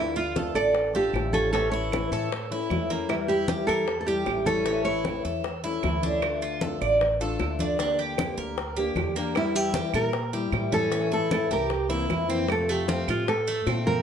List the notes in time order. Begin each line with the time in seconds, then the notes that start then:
Already playing: D2 D3 A3 D4 E4
0.00 F4
0.16 F4, high conga
0.36 D3 A3 D4 F4 A4, high bongo, high conga
0.54 A1 A4 D5, high bongo, high conga, claves
0.75 muted steel-string acoustic guitar stroke, high bongo, high conga
0.94 A3 D4 F4 G4 A4, high bongo, high conga
1.13 A1 D3 A3 D4 F4, high bongo, low bongo, high conga, claves
1.33 A3 C#4 D4 F4 A4, high bongo, high conga
1.53 E3 A3 C#4 E4 A4, high bongo, high conga
1.72 E4 C#5, high conga
1.92 E3 A3 C#4 E4, high bongo, high conga, claves
2.12 A2 A4 C#5, high bongo, high conga
2.32 muted steel-string acoustic guitar stroke, high bongo, high conga
2.51 A3 C#4 E4, high bongo, high conga
2.70 E2 E3 A3 C#4 E4, high bongo, low bongo, high conga, claves
2.90 A3 A#3 C#4 E4, high bongo, high conga
3.09 E3 G3 E4, high bongo, high conga, claves
3.28 E4 G4, high conga
3.48 E3 G3 E4 G4, high bongo, high conga
3.67 E2 A#3 A4, high bongo, high conga, claves
3.88 muted steel-string acoustic guitar stroke, high bongo, high conga
4.01 A4
4.06 G3 E4 G4, high bongo, high conga
4.26 A1 E3 G3 E4, high bongo, low bongo, high conga, claves
4.45 G3 C#4 E4 A4, high bongo, high conga
4.66 E3 A3 C#4 E4, high bongo, high conga
4.85 E4 C#5, high conga
5.05 A3 C#4 E4, high bongo, high conga, claves
5.25 E2 A4, high bongo, high conga
5.44 muted steel-string acoustic guitar stroke, high bongo, high conga
5.64 A3 C#4 E4, high bongo, high conga
5.83 D2 E3 A3 C#4 E4, high bongo, low bongo, high conga, claves
6.03 A3 C#4 D4 E4, high bongo, high conga
6.22 D3 A3 D4 F4, high bongo, high conga, claves
6.41 F4, high conga
6.61 D3 A3 D4 F4 A4, high bongo, high conga
6.81 A1 D5, high bongo, high conga, claves
7.01 muted steel-string acoustic guitar stroke, high bongo, high conga
7.20 A3 D4 F4 A4, high bongo, high conga
7.39 D2 D3 A3 D4 F4, high bongo, low bongo, high conga, claves
7.59 A3 D4 F4, high bongo, high conga
7.79 D3 A#3 D4 G4, high bongo, high conga
7.99 G4, high conga
8.18 D3 A#3 D4 G4, high bongo, high conga, claves
8.38 D2 A#4, high bongo, high conga
8.58 muted steel-string acoustic guitar stroke, high bongo, high conga
8.77 A#3 D4 G4, high bongo, high conga
8.96 E2 D3 A#3 D4 G4, high bongo, low bongo, high conga, claves
9.16 A#3 D4 G4, high bongo
9.35 E3 G3 E4, high bongo, high conga, claves
9.55 E4 G4, high conga
9.74 E3 G3 E4 G4, high bongo, high conga
9.94 A#2 A#4, high bongo, high conga, claves
10.13 muted steel-string acoustic guitar stroke, high bongo, high conga
10.33 G3 E4 G4, high bongo, high conga
10.52 A2 E3 G3 E4, high bongo, low bongo, high conga, claves
10.72 G3 C#4 E4 A4, high bongo, high conga
10.91 E3 A3 C#4 E4, high bongo, high conga
11.12 E4 A4, high conga
11.31 E3 A3 C#4 E4 A4, high bongo, high conga, claves
11.51 C2 G4 A#4, high bongo, high conga
11.70 muted steel-string acoustic guitar stroke, high bongo, high conga
11.89 E3 A#3 C4 E4, high bongo, high conga
12.08 F2 E3 A#3 C4 E4, high bongo, low bongo, high conga, claves
12.28 E3 A#3 C4 E4, high bongo
12.48 C3 F3 A3 C4 F4 A4, high bongo, high conga, claves
12.69 A3 G4, high conga
12.87 C3 F3 A3 C4 F4, high bongo, high conga
13.08 A2 F4, high bongo, high conga, claves
13.27 A4, muted steel-string acoustic guitar stroke, high bongo, high conga
13.47 A3, high bongo, high conga
13.66 A#2 F3 A3 C4 F4, high bongo, low bongo, high conga, claves
13.86 F3 A3 C4 F4 A#4, high bongo, high conga